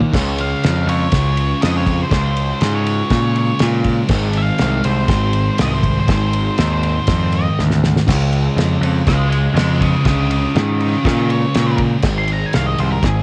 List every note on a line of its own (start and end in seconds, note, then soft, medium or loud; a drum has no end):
0.00 0.12 D#3 medium
0.00 0.13 A#3 medium
0.00 0.14 D#4 loud
0.00 floor tom medium
0.13 0.53 C#2 loud
0.13 2.09 C#3 loud
0.13 2.13 G#3 loud
0.13 kick loud
0.13 snare loud
0.13 crash loud
0.19 2.13 C#4 loud
0.38 0.88 F5 loud
0.38 ride medium
0.64 0.84 F2 medium
0.64 snare loud
0.64 ride loud
0.87 1.07 F2 loud
0.87 1.61 C#5 medium
0.87 ride medium
1.12 1.53 C#2 medium
1.12 kick loud
1.12 snare loud
1.12 ride loud
1.37 ride medium
1.62 2.03 F2 medium
1.62 1.74 D#5 medium
1.62 snare loud
1.62 ride loud
1.78 2.00 C#5 medium
1.87 kick medium
1.87 ride medium
2.03 2.74 C5 medium
2.10 2.52 C#2 loud
2.10 4.08 C#3 medium
2.10 4.13 G#3 loud
2.10 kick loud
2.10 snare loud
2.10 ride loud
2.16 4.11 C#4 loud
2.37 ride medium
2.61 3.01 G#2 medium
2.61 snare loud
2.61 ride loud
2.75 3.35 C#5 medium
2.86 ride medium
3.10 3.51 A#2 loud
3.10 kick loud
3.10 snare loud
3.10 ride loud
3.36 3.61 C#5 loud
3.36 ride medium
3.59 4.02 A#2 loud
3.59 snare loud
3.59 ride loud
3.84 kick medium
3.84 ride medium
4.08 4.50 G#1 loud
4.08 6.05 G#2 loud
4.08 6.08 D#3 loud
4.08 kick loud
4.08 snare loud
4.08 crash loud
4.14 6.11 G#3 loud
4.33 ride medium
4.38 4.85 F5 loud
4.58 4.81 C2 loud
4.58 snare loud
4.58 ride loud
4.84 5.05 C2 medium
4.84 5.57 C5 loud
4.84 ride medium
5.08 5.49 G#1 loud
5.08 kick loud
5.08 snare loud
5.08 ride loud
5.33 ride medium
5.58 6.00 C2 medium
5.58 5.73 D#5 medium
5.58 snare loud
5.58 ride loud
5.73 5.97 C5 medium
5.83 kick medium
5.83 ride medium
6.00 6.70 C5 medium
6.07 6.49 G#1 loud
6.07 8.05 G#2 loud
6.07 8.06 D#3 loud
6.07 kick loud
6.07 snare loud
6.07 ride loud
6.12 8.09 G#3 loud
6.33 ride medium
6.58 6.99 D#2 medium
6.58 snare loud
6.58 ride loud
6.72 7.32 C5 medium
6.83 ride medium
7.07 7.48 F2 medium
7.07 kick loud
7.07 snare loud
7.07 ride loud
7.32 7.58 D#5 loud
7.32 ride medium
7.59 7.98 D2 medium
7.59 snare medium
7.71 snare medium
7.84 snare loud
7.96 snare medium
8.07 8.48 C#2 loud
8.07 10.03 C#3 loud
8.07 10.07 G#3 medium
8.07 kick loud
8.07 snare loud
8.07 crash loud
8.12 10.07 C#4 loud
8.33 ride medium
8.56 8.77 F2 loud
8.56 snare loud
8.56 ride loud
8.81 9.01 F2 medium
8.81 ride medium
9.07 9.47 C#2 loud
9.07 9.29 D#5 loud
9.07 9.31 G#5 medium
9.07 kick loud
9.07 snare loud
9.07 ride loud
9.30 9.54 D#5 loud
9.30 9.55 G#5 loud
9.30 ride medium
9.54 9.95 F2 loud
9.54 9.79 D#5 medium
9.54 9.80 G#5 medium
9.54 snare loud
9.54 ride loud
9.81 10.04 C#5 medium
9.81 10.05 F5 medium
9.81 kick medium
9.81 ride medium
10.04 10.45 C#2 loud
10.04 12.02 C#3 loud
10.04 12.03 G#3 loud
10.04 10.29 C#5 medium
10.04 10.30 F5 loud
10.04 kick loud
10.04 snare loud
10.04 ride loud
10.10 12.05 C#4 loud
10.31 10.54 C#5 medium
10.31 10.55 F5 medium
10.31 ride medium
10.55 10.95 G#2 medium
10.55 10.79 A#4 loud
10.55 10.80 D#5 loud
10.55 snare loud
10.55 ride loud
10.80 11.04 A#4 medium
10.80 11.04 D#5 loud
10.80 ride medium
11.05 11.44 A#2 loud
11.05 11.29 A#4 medium
11.05 11.29 D#5 medium
11.05 kick loud
11.05 snare loud
11.05 ride loud
11.30 11.78 C#5 loud
11.30 ride medium
11.54 11.95 A#2 loud
11.54 snare loud
11.54 ride loud
11.78 kick medium
11.78 ride medium
12.02 12.44 G#1 loud
12.02 13.23 G#2 loud
12.02 13.23 D#3 loud
12.02 kick loud
12.02 snare loud
12.02 crash loud
12.08 13.23 G#3 loud
12.18 12.29 C6 loud
12.28 ride medium
12.33 12.46 A#5 medium
12.46 12.56 G#5 medium
12.53 12.75 C2 medium
12.53 12.66 F5 loud
12.53 snare loud
12.53 ride loud
12.66 12.78 D#5 medium
12.78 12.99 C2 medium
12.78 12.91 C5 loud
12.78 ride medium
12.91 13.03 A#4 medium
13.03 13.23 G#1 medium
13.03 13.23 G#4 loud
13.03 kick loud
13.03 snare loud
13.03 ride loud